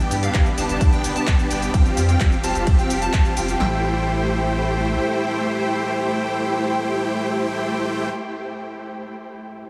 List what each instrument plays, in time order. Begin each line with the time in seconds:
Already playing: supersaw synth B3 D4 G4 D5 G5, string section B3 D4 G4, digital synth lead G5
0.11 sub bass G2, open hi-hat, shaker
0.23 supersaw synth B3 D4 G4 D5 F5, digital synth lead F5, closed hi-hat, shaker
0.34 sub bass G1, kick, clap, closed hi-hat, ride, shaker
0.46 closed hi-hat, shaker
0.58 sub bass G1, supersaw synth B3 D4 G4 D5 A5, digital synth lead A5, open hi-hat, shaker
0.69 sub bass G1, closed hi-hat, shaker
0.81 sub bass G1, kick, closed hi-hat, ride, shaker
0.93 supersaw synth B3 D4 G4 D5 G5, digital synth lead G5, closed hi-hat, shaker
1.04 sub bass G1, open hi-hat, shaker
1.16 supersaw synth B3 D4 G4 D5 A5, digital synth lead A5, closed hi-hat, shaker
1.27 sub bass G1, kick, clap, closed hi-hat, ride, shaker
1.39 closed hi-hat, shaker
1.51 sub bass G1, supersaw synth B3 D4 G4 D5 G5, digital synth lead G5, open hi-hat, shaker
1.62 closed hi-hat, shaker
1.74 sub bass F1, supersaw synth C4 F4 G4 F5 G5, string section C4 F4 G4, digital synth lead G5, kick, closed hi-hat, ride, shaker
1.86 closed hi-hat, shaker
1.97 sub bass F2, open hi-hat, shaker
2.09 supersaw synth C4 F4 G4 F5 G5, digital synth lead G5, closed hi-hat, shaker
2.20 sub bass F1, kick, clap, closed hi-hat, ride, shaker
2.32 closed hi-hat, shaker
2.44 sub bass F1, supersaw synth C4 F4 G4 F5 A5, digital synth lead A5, open hi-hat, shaker
2.55 sub bass F1, closed hi-hat, shaker
2.67 sub bass F1, kick, closed hi-hat, ride, shaker
2.79 supersaw synth C4 F4 G4 F5 G5, digital synth lead G5, closed hi-hat, shaker
2.90 sub bass F1, open hi-hat, shaker
3.02 supersaw synth C4 F4 G4 F5 A5, digital synth lead A5, closed hi-hat, shaker
3.13 sub bass F1, kick, clap, closed hi-hat, ride, shaker
3.25 closed hi-hat, shaker
3.37 sub bass F1, supersaw synth C4 F4 G4 F5 G5, digital synth lead G5, open hi-hat, shaker
3.48 closed hi-hat, shaker
3.60 sub bass A1, supersaw synth A3 E4 G4 C5 G5, string section A3 E4 G4 C5, digital synth lead G5, snare, clap